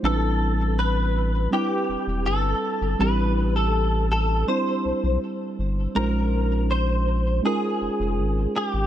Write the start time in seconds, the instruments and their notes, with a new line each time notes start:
0.02 sub bass A1, synth keys G3 C4 D4 E4 B4, clean electric guitar A4
0.79 clean electric guitar B4
1.51 synth keys G3 C4 D4 E4 B4, clean electric guitar G4
1.89 sub bass E1
2.07 sub bass E1
2.26 sub bass G1, clean electric guitar A4
2.81 sub bass G1
2.99 sub bass A1, synth keys G3 C4 D4 E4 G4, clean electric guitar B4
3.56 clean electric guitar A4
4.12 clean electric guitar A4
4.47 synth keys G3 C4 D4 E4 C5, clean electric guitar C5
4.85 sub bass B1
5.03 sub bass B1
5.59 sub bass G1
5.95 sub bass A#1, synth keys G#3 C#4 D#4 F4, clean electric guitar A#4
5.99 synth keys C5
6.71 clean electric guitar C5
7.42 synth keys G#3 C#4 D#4 F4, clean electric guitar G#4
7.47 synth keys A#4
7.81 sub bass F1
8.00 sub bass F1
8.18 sub bass G#1
8.56 clean electric guitar G4
8.73 sub bass G#1